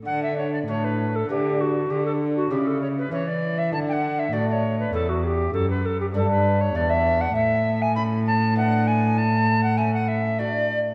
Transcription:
0.05 cello D3, lute D3, recorder F#5
0.22 recorder E5
0.37 recorder C#5
0.52 recorder D5
0.67 cello A2, lute A2 A3 D4 F#4, recorder C#5
0.84 recorder B4
1.15 recorder A4
1.29 cello D3, lute D3 B3 E4, recorder G4
1.60 recorder F#4
1.90 cello D3, lute D3, recorder G4
2.05 recorder A4
2.36 recorder F#4
2.50 lute C#3 C#4 E4, cello C#3, recorder G4
2.66 recorder A4
2.81 recorder C#5
2.97 recorder B4
3.11 cello E3, lute E3 C#4 E4, recorder C#5
3.27 recorder D5
3.58 recorder E5
3.72 cello D3, lute D3, recorder A5
3.88 recorder G5
3.92 recorder F#5
4.19 recorder E5
4.32 lute A2 A3 D4 F#4, cello A2, recorder D5
4.48 recorder C#5 D5
4.79 recorder B4
4.93 lute E2 A3 C#4 E4, cello E2, recorder A4
5.09 recorder F#4
5.23 recorder G4 G#4
5.53 lute F#2, cello F#2, recorder A4
5.69 recorder B4
5.85 recorder A4
6.00 recorder G4
6.14 lute G2 A3 D4, cello G2, recorder A4
6.30 recorder B4
6.60 recorder C#5
6.75 lute E2 A3 D4, cello E2, recorder D5
6.89 recorder E5
7.20 recorder F#5
7.35 cello A2, lute A2, recorder E5
7.81 recorder G#5
7.95 lute A3 C#4 E4, recorder B5
8.26 recorder A5
8.55 lute B3 D4 E4, recorder F#5
8.87 recorder G#5
9.17 recorder A5
9.63 recorder F#5
9.77 lute A3 C#4 E4, recorder G#5
9.93 recorder F#5
10.07 recorder E5
10.38 lute A3 D4 F#4, recorder D5

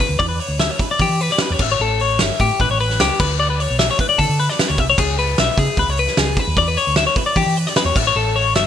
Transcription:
0.00 clean electric guitar B4
0.09 fingered electric bass D2
0.19 fingered electric bass E2, clean electric guitar D5, kick, open hi-hat
0.29 clean electric guitar B4
0.40 clean electric guitar C#5, open hi-hat
0.48 fingered electric bass D2
0.59 clean electric guitar E5, snare, open hi-hat
0.71 clean electric guitar C#5
0.79 clean electric guitar B4, kick, open hi-hat
0.91 clean electric guitar D5
0.99 fingered electric bass E3, clean electric guitar G4, kick, open hi-hat
1.09 fingered electric bass E3
1.20 clean electric guitar B4, open hi-hat
1.29 clean electric guitar D5, snare
1.38 clean electric guitar B4, snare, open hi-hat
1.50 fingered electric bass E2, clean electric guitar C#5
1.59 fingered electric bass A1, clean electric guitar E5, kick, crash
1.72 clean electric guitar C#5
1.79 fingered electric bass A1, clean electric guitar A4
1.99 clean electric guitar C#5, open hi-hat
2.19 fingered electric bass G1, clean electric guitar E5, snare, open hi-hat
2.39 fingered electric bass A2, clean electric guitar G4, kick, open hi-hat
2.59 fingered electric bass A1, clean electric guitar B4, kick, open hi-hat
2.70 fingered electric bass A1, clean electric guitar C#5
2.80 clean electric guitar B4, open hi-hat
2.90 snare
3.00 fingered electric bass C#2, clean electric guitar G4, snare, open hi-hat
3.20 fingered electric bass D2, clean electric guitar B4, kick, crash
3.40 clean electric guitar D5
3.50 clean electric guitar B4
3.60 clean electric guitar C#5, open hi-hat
3.70 fingered electric bass B1
3.79 clean electric guitar E5, snare, open hi-hat
3.91 clean electric guitar C#5
3.99 clean electric guitar B4, kick, open hi-hat
4.09 clean electric guitar D5
4.18 fingered electric bass D3, clean electric guitar A4, kick, open hi-hat
4.29 fingered electric bass D3
4.40 clean electric guitar B4, open hi-hat
4.49 clean electric guitar D5, snare
4.59 clean electric guitar B4, snare, open hi-hat
4.69 fingered electric bass D2, clean electric guitar C#5
4.78 fingered electric bass C2, clean electric guitar E5, kick, open hi-hat
4.90 clean electric guitar C#5
4.98 fingered electric bass C#2, clean electric guitar G#4, kick, crash
5.19 clean electric guitar B4, open hi-hat
5.38 fingered electric bass B1, clean electric guitar E5, snare, open hi-hat
5.58 fingered electric bass C#3, clean electric guitar G#4, kick, open hi-hat
5.77 fingered electric bass C#2, clean electric guitar B4, kick, open hi-hat
5.88 fingered electric bass C#2, clean electric guitar C#5
5.97 clean electric guitar B4, open hi-hat
6.07 snare
6.17 fingered electric bass C#2, clean electric guitar G#4, snare, open hi-hat
6.37 clean electric guitar B4, kick, open hi-hat
6.47 fingered electric bass D#2
6.56 fingered electric bass E2, clean electric guitar D5, kick, open hi-hat
6.68 clean electric guitar B4
6.77 clean electric guitar C#5, open hi-hat
6.87 fingered electric bass D2
6.96 clean electric guitar E5, snare, open hi-hat
7.07 clean electric guitar C#5
7.16 clean electric guitar B4, kick, open hi-hat
7.26 clean electric guitar D5
7.36 fingered electric bass E3, clean electric guitar G4, kick, open hi-hat
7.46 fingered electric bass E3
7.56 clean electric guitar B4, open hi-hat
7.66 clean electric guitar D5, snare
7.76 clean electric guitar B4, snare, open hi-hat
7.85 fingered electric bass E2, clean electric guitar C#5
7.96 fingered electric bass A1, clean electric guitar E5, kick, crash
8.07 clean electric guitar C#5
8.15 fingered electric bass A1, clean electric guitar A4
8.36 clean electric guitar C#5, open hi-hat
8.55 fingered electric bass G1, clean electric guitar E5, snare, open hi-hat

